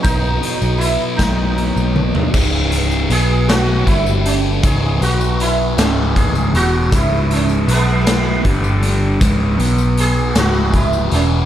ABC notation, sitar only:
X:1
M:6/8
L:1/8
Q:3/8=52
K:B
V:1 name="Sitar"
D2 E D2 z | z2 G F E C | G F E C G F | E C [G,B,]2 z2 |
z2 G F E C |]